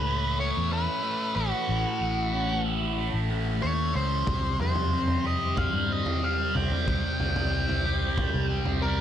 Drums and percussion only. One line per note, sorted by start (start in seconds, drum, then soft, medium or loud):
4.27 kick medium
4.27 floor tom medium
4.60 floor tom medium
4.75 floor tom medium
5.08 floor tom medium
5.57 kick loud
5.57 floor tom medium
6.06 floor tom medium
6.56 floor tom medium
6.72 floor tom medium
6.88 kick medium
6.88 floor tom medium
7.20 floor tom medium
7.36 floor tom medium
7.69 floor tom medium
8.18 kick medium
8.18 floor tom medium
8.65 floor tom medium